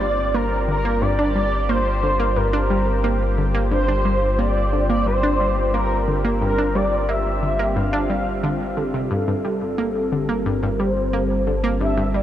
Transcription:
0.00 9.08 G1 medium
0.00 12.23 G3 medium
0.00 0.11 G3 medium
0.00 12.23 C4 medium
0.00 12.23 F4 medium
0.00 10.71 G4 medium
0.00 0.36 D5 loud
0.34 0.44 A#3 loud
0.34 0.67 A#4 loud
0.68 0.83 D3 medium
0.68 1.03 A#4 loud
0.85 1.00 A#3 loud
1.01 1.17 G2 loud
1.01 1.70 D5 loud
1.19 1.29 D4 loud
1.35 1.46 G3 medium
1.69 1.79 A#3 loud
1.69 2.38 C5 loud
2.03 2.18 D3 medium
2.20 2.35 A#3 loud
2.36 2.52 G2 loud
2.36 3.38 A#4 medium
2.53 2.63 D4 loud
2.70 2.80 G3 medium
3.04 3.14 A#3 loud
3.38 3.53 D3 medium
3.54 3.70 A#3 loud
3.71 3.87 G2 loud
3.71 4.40 C5 loud
3.88 3.98 D4 medium
4.05 4.15 G3 medium
4.39 4.49 A#3 loud
4.39 4.89 D5 medium
4.73 4.88 D3 medium
4.90 5.05 A#3 medium
4.90 5.05 D5 medium
5.06 5.22 G2 loud
5.06 5.70 C5 loud
5.23 5.33 D4 loud
5.40 5.50 G3 medium
5.74 5.84 A#3 loud
5.74 6.21 A#4 medium
6.08 6.23 D3 medium
6.25 6.40 A#3 loud
6.41 6.56 G2 loud
6.41 6.76 A#4 loud
6.58 6.68 D4 loud
6.75 6.85 G3 medium
6.75 7.10 D5 loud
7.09 7.19 A#3 loud
7.09 7.78 E5 loud
7.42 7.57 D3 medium
7.59 7.74 A#3 loud
7.76 7.91 G2 loud
7.76 8.77 F5 loud
7.93 8.03 D4 loud
8.10 8.25 G3 medium
8.43 8.54 D3 loud
8.77 8.83 D3 medium
8.94 9.09 C3 medium
9.11 12.23 G1 medium
9.11 9.26 G2 medium
9.11 10.47 A4 loud
9.28 9.34 G2 medium
9.45 9.55 G3 medium
9.78 9.88 A#3 loud
10.12 10.27 D3 medium
10.29 10.44 A#3 loud
10.46 10.61 G2 loud
10.46 10.81 A#4 loud
10.63 10.69 G2 loud
10.67 12.23 A5 medium
10.80 10.90 G3 medium
10.80 11.47 C5 loud
11.13 11.23 A#3 loud
11.47 11.62 D3 medium
11.64 11.79 A#3 loud
11.81 11.96 G2 medium
11.81 12.16 E5 loud
11.97 12.03 G2 medium
12.14 12.23 G3 medium
12.14 12.23 D5 loud

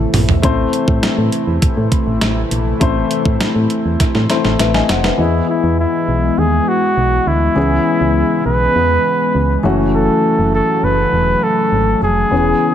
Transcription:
0.00 0.41 C3 medium
0.00 0.41 E3 medium
0.00 0.41 A3 medium
0.00 0.10 E4 medium
0.00 0.40 E4 medium
0.00 0.11 C5 medium
0.14 0.36 A#1 medium
0.14 mid tom medium
0.14 open hi-hat medium
0.29 floor tom medium
0.42 0.66 A1 loud
0.42 5.15 C3 medium
0.42 5.15 E3 medium
0.42 2.77 A3 medium
0.42 5.15 A3 medium
0.42 2.77 C4 medium
0.42 5.15 E4 medium
0.42 2.77 E4 medium
0.42 2.78 C5 medium
0.42 kick loud
0.42 closed hi-hat medium
0.73 closed hi-hat medium
0.88 0.99 A2 loud
0.88 kick loud
1.03 snare loud
1.03 closed hi-hat medium
1.18 1.29 A2 medium
1.32 closed hi-hat medium
1.47 1.59 E2 medium
1.62 1.68 A2 soft
1.62 kick medium
1.62 closed hi-hat medium
1.77 1.88 A2 medium
1.92 kick medium
1.92 closed hi-hat medium
2.07 2.18 A1 medium
2.21 2.44 A1 medium
2.21 snare medium
2.21 closed hi-hat medium
2.51 2.74 A#1 medium
2.51 closed hi-hat medium
2.80 3.03 A1 medium
2.80 4.26 A3 medium
2.80 4.27 C4 medium
2.80 4.27 E4 medium
2.80 4.27 C5 medium
2.80 kick loud
2.80 closed hi-hat medium
3.11 closed hi-hat medium
3.25 3.37 A2 loud
3.25 kick loud
3.41 snare loud
3.41 closed hi-hat medium
3.55 3.67 A2 medium
3.70 closed hi-hat medium
3.85 3.96 E2 medium
4.00 4.06 A2 soft
4.00 kick medium
4.00 snare soft
4.00 closed hi-hat medium
4.15 4.26 A2 medium
4.15 snare soft
4.29 5.19 A3 medium
4.29 5.19 C4 soft
4.29 5.19 E4 soft
4.29 4.60 C5 medium
4.29 snare medium
4.29 closed hi-hat medium
4.45 4.56 A1 medium
4.45 snare medium
4.59 4.82 A1 medium
4.59 4.74 B4 soft
4.59 4.74 E5 medium
4.59 snare medium
4.59 closed hi-hat medium
4.74 4.89 D#5 medium
4.74 4.88 G#5 medium
4.74 snare medium
4.89 5.11 F1 medium
4.89 5.04 C5 medium
4.89 5.03 F#5 medium
4.89 snare medium
4.89 closed hi-hat medium
5.04 5.32 B4 medium
5.04 5.32 E5 medium
5.04 snare medium
5.17 5.41 E2 medium
5.17 7.52 E3 medium
5.17 7.54 E3 medium
5.17 7.54 G#3 medium
5.17 7.52 B3 soft
5.17 7.54 B3 medium
5.17 5.47 E4 medium
5.17 7.53 G#4 medium
5.17 7.53 D#5 medium
5.50 5.77 E4 medium
5.63 5.86 E2 medium
5.80 6.40 E4 medium
6.08 6.30 B1 medium
6.38 6.60 D#2 medium
6.38 6.70 G#4 medium
6.68 7.29 F#4 medium
6.97 7.19 B1 medium
7.27 7.49 D2 medium
7.27 8.46 E4 medium
7.55 7.79 C#2 medium
7.55 12.74 C#3 medium
7.55 9.60 E3 medium
7.55 9.62 G#3 medium
7.55 9.60 B3 medium
7.55 9.62 B3 medium
7.55 9.61 C#4 soft
7.55 9.61 G#4 medium
8.01 8.23 C#2 medium
8.46 8.68 B1 medium
8.46 9.61 B4 medium
8.76 8.98 E2 medium
9.35 9.57 C#2 medium
9.63 10.09 F#1 medium
9.63 11.97 E3 medium
9.63 12.29 F#3 medium
9.63 11.98 A3 medium
9.63 12.29 A3 medium
9.63 11.98 C#4 medium
9.63 11.99 F#4 medium
9.95 10.50 A4 medium
10.39 10.61 F#1 medium
10.54 10.85 A4 medium
10.83 11.05 F#1 medium
10.83 11.45 B4 medium
11.13 11.35 E1 medium
11.43 12.02 A4 medium
11.72 11.95 G#1 medium
12.02 12.24 F1 medium
12.02 12.74 G#4 medium
12.31 12.54 E1 medium
12.31 12.74 E3 medium
12.31 12.74 G#3 medium
12.31 12.74 B3 medium
12.31 12.74 C#4 soft
12.31 12.74 G#4 medium

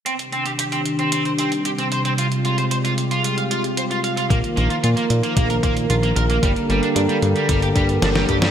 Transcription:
0.06 4.27 C3 medium
0.06 2.16 D#3 medium
0.06 4.27 G3 medium
0.06 0.13 C4 medium
0.06 2.16 D4 medium
0.06 2.16 G4 medium
0.06 closed hi-hat medium
0.19 closed hi-hat soft
0.32 0.42 C4 medium
0.32 closed hi-hat soft
0.46 0.50 G4 medium
0.46 closed hi-hat soft
0.59 0.63 G4 medium
0.59 closed hi-hat medium
0.72 0.79 C4 loud
0.72 closed hi-hat soft
0.85 closed hi-hat medium
0.99 1.09 C4 medium
0.99 closed hi-hat soft
1.12 1.22 C4 medium
1.12 closed hi-hat medium
1.25 1.29 C5 medium
1.25 closed hi-hat soft
1.39 1.49 C4 medium
1.39 closed hi-hat medium
1.52 closed hi-hat soft
1.65 1.69 G4 medium
1.65 closed hi-hat medium
1.78 1.85 C4 medium
1.78 closed hi-hat soft
1.92 1.99 C5 medium
1.92 closed hi-hat medium
2.05 2.12 C4 medium
2.05 closed hi-hat soft
2.18 4.28 G#3 medium
2.18 6.39 F4 medium
2.18 2.25 F4 medium
2.18 4.28 G4 medium
2.18 closed hi-hat medium
2.32 closed hi-hat soft
2.45 2.55 F4 medium
2.45 closed hi-hat soft
2.58 2.62 C5 medium
2.58 closed hi-hat soft
2.71 2.75 C5 medium
2.71 closed hi-hat medium
2.85 2.91 F4 loud
2.85 closed hi-hat soft
2.98 closed hi-hat medium
3.11 3.21 F4 medium
3.11 closed hi-hat soft
3.24 3.35 F4 medium
3.24 closed hi-hat loud
3.38 3.42 F5 medium
3.38 closed hi-hat soft
3.51 3.61 F4 medium
3.51 closed hi-hat medium
3.64 closed hi-hat soft
3.77 3.82 C5 medium
3.77 closed hi-hat medium
3.91 3.98 F4 loud
3.91 closed hi-hat soft
4.04 4.11 F5 medium
4.04 closed hi-hat medium
4.17 4.24 F4 medium
4.17 closed hi-hat soft
4.30 4.42 A#1 loud
4.30 6.41 D#3 medium
4.30 6.41 F3 medium
4.30 4.37 A#3 medium
4.30 8.51 A#3 medium
4.30 8.51 A#4 medium
4.30 kick loud
4.30 closed hi-hat medium
4.44 closed hi-hat soft
4.57 4.69 A#1 medium
4.57 4.67 A#3 medium
4.57 closed hi-hat soft
4.70 4.74 F4 medium
4.70 closed hi-hat soft
4.83 4.95 A#2 medium
4.83 4.88 F4 medium
4.83 closed hi-hat medium
4.97 5.03 A#3 medium
4.97 closed hi-hat soft
5.10 5.22 A#2 medium
5.10 closed hi-hat medium
5.23 5.33 A#3 medium
5.23 closed hi-hat soft
5.37 5.60 A#1 medium
5.37 5.47 A#3 medium
5.37 kick loud
5.37 closed hi-hat medium
5.50 5.54 A#4 medium
5.50 closed hi-hat soft
5.63 5.86 A#2 medium
5.63 5.74 A#3 medium
5.63 kick loud
5.63 closed hi-hat medium
5.77 closed hi-hat soft
5.90 6.13 A#1 medium
5.90 5.94 F4 medium
5.90 closed hi-hat medium
6.03 6.10 A#3 loud
6.03 closed hi-hat soft
6.16 6.39 A#1 medium
6.16 6.23 A#4 medium
6.16 closed hi-hat medium
6.30 6.37 A#3 medium
6.30 closed hi-hat soft
6.43 6.54 G1 loud
6.43 8.51 D3 medium
6.43 6.50 G3 medium
6.43 8.51 G3 medium
6.43 8.51 G4 medium
6.43 kick loud
6.43 closed hi-hat medium
6.56 closed hi-hat soft
6.69 6.81 G1 medium
6.69 6.80 G3 medium
6.69 closed hi-hat soft
6.83 6.87 D4 medium
6.83 closed hi-hat soft
6.96 7.08 G2 medium
6.96 7.00 D4 medium
6.96 closed hi-hat medium
7.09 7.16 G3 loud
7.09 closed hi-hat soft
7.22 7.34 G2 medium
7.22 closed hi-hat medium
7.36 7.46 G3 medium
7.36 closed hi-hat soft
7.49 7.72 G1 medium
7.49 7.59 G3 medium
7.49 kick loud
7.49 closed hi-hat medium
7.62 7.67 G4 medium
7.62 closed hi-hat soft
7.75 7.99 G2 medium
7.75 7.86 G3 medium
7.75 kick loud
7.75 closed hi-hat medium
7.89 closed hi-hat soft
8.02 8.25 G1 medium
8.02 8.06 D4 medium
8.02 snare medium
8.02 closed hi-hat medium
8.16 8.22 G3 loud
8.16 snare medium
8.16 closed hi-hat soft
8.29 8.51 G2 loud
8.29 8.36 G4 medium
8.29 kick medium
8.29 closed hi-hat medium
8.42 8.49 G3 medium
8.42 snare medium
8.42 closed hi-hat soft

